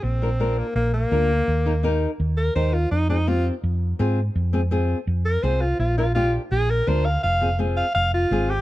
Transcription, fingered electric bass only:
\new Staff \with { instrumentName = "Fingered electric bass" } { \clef bass \time 4/4 \key f \dorian \tempo 4 = 167 bes,,2 bes,,4 d,4 | ees,2 ees,4 ees,4 | f,2 f,4 aes,4 | f,2 f,4 c,4 |
bes,,2 bes,,4 d,4 | f,,2 f,,4 aes,,4 | }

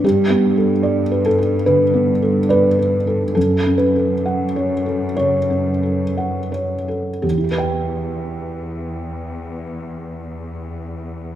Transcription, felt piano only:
\new Staff \with { instrumentName = "Felt piano" } { \time 4/4 \key e \dorian \tempo 4 = 62 << { g'4. a'8 b'4 b'4 | a'8 b'4. cis''4. r8 | <e, e e' g' b' g''>1 | } \\ { \tuplet 3/2 { g,8 b8 a'8 d''8 b'8 a'8 d8 b8 a'8 d''8 b'8 a'8 } | \tuplet 3/2 { fis,8 cis'8 a'8 fis''8 cis''8 a'8 cis8 cis'8 a'8 fis''8 cis''8 a'8 } | r1 | } >> }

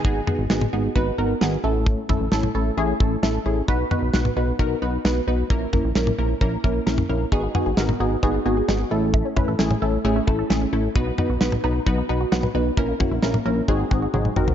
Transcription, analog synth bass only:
\new Staff \with { instrumentName = "Analog synth bass" } { \clef bass \time 4/4 \key gis \minor \tempo 4 = 132 gis,,8 r16 gis,,16 gis,,8 gis,,8 gis,,8 gis,,8 gis,,8 a,,8~ | a,,8 r16 a,,16 a,,8 a,,8 a,,8 a,,8 a,,8 a,,8 | b,,8 r16 b,,16 b,,8 b,,8 b,,8 b,,8 b,,8 b,,8 | ais,,8 r16 ais,,16 ais,,8 ais,,8 ais,,8 ais,,8 ais,,8 ais,,8 |
gis,,8 r16 gis,,16 gis,,8 gis,,8 gis,,8 gis,,8 gis,,8 a,,8~ | a,,8 r16 a,,16 a,,8 a,,8 a,,8 a,,8 a,,8 a,,8 | b,,8 r16 b,,16 b,,8 b,,8 b,,8 b,,8 b,,8 b,,8 | ais,,8 r16 ais,,16 ais,,8 ais,,8 gis,,8 gis,,8 gis,,8 gis,,8 | }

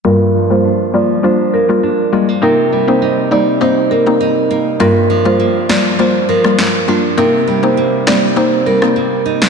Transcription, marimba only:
\new Staff \with { instrumentName = "Marimba" } { \time 4/4 \key g \minor \tempo 4 = 101 bes'8 r16 c''16 r8 d''16 r16 c''16 r16 bes'16 r4 r16 | bes'8 r16 c''16 r8 d''16 r16 c''16 r16 bes'16 r4 r16 | bes'8 r16 c''16 r8 d''16 r16 c''16 r16 bes'16 r4 r16 | bes'8 r16 c''16 r8 d''16 r16 c''16 r16 bes'16 r4 r16 | }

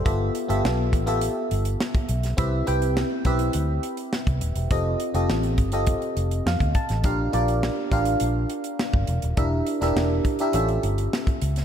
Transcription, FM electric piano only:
\new Staff \with { instrumentName = "FM electric piano" } { \time 4/4 \key f \major \tempo 4 = 103 << { c''16 r2. r8. | r1 | r2. f''8 a''8 | r1 |
r1 | } \\ { <b f' g' a' e''>8 r16 <b f' g' a' e''>8. r16 <b f' g' a' e''>4. r8. | <c' e' g' b' e''>16 r16 <c' e' g' b' g''>8. r16 <c' e' g' b' e''>4. r4 | <c' f' g' a' ees''>8 r16 <c' f' g' a' ees''>8. r16 <c' f' g' a' ees''>4. r8. | <d' f' g' bes' f''>16 r16 <d' f' g' bes' d''>8. r16 <d' f' g' bes' f''>4. r4 |
<d' e' g' bes' e''>8 r16 <d' e' g' bes' e''>8. r16 <d' e' g' bes' e''>16 <cis' f' g' a' e''>4. r8 | } >> }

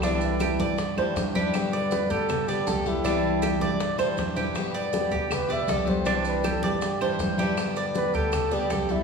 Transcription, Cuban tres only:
\new Staff \with { instrumentName = "Cuban tres" } { \time 4/4 \key g \major \tempo 4 = 159 d'4 g'8 d''4 c''4 g'8~ | g'8 d''4 g'4 d''8 a'4 | d'4 g'8 d''4 c''4 g'8~ | g'8 d''4 g'4 d''8 a'4 |
d'4 g'8 d''4 c''4 g'8~ | g'8 d''4 g'4 d''8 a'4 | }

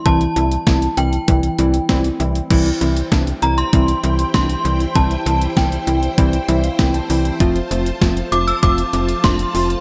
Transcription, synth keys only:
\new Staff \with { instrumentName = "Synth keys" } { \time 4/4 \key c \mixolydian \tempo 4 = 98 << { r1 | r1 | r2 r8 e''16 f''16 g''16 a''8. | r1 | } \\ { <e g c' e'>8 <e g c' e'>8 <e g c' e'>8 <e g c' e'>8 <e g c' e'>8 <e g c' e'>8 <e g c' e'>8 <e g c' e'>8 | <e g c' e'>8 <e g c' e'>8 <e g c' d'>8 <e g c' e'>8 <e g c' e'>8 <e g c' e'>8 <e g c' d'>8 <e g c' e'>8 | <e g c' e'>8 <e g c' e'>8 <e g c' e'>8 <e g c' e'>8 <e g c' e'>8 <e g c' e'>8 <e g c' e'>8 <e g c' e'>8 | <f a c' f'>8 <f a c' f'>8 <f a c' f'>8 <f a c' f'>8 <f a c' f'>8 <f a c' f'>8 <f a c' d'>8 <f a c' f'>8 | } >> }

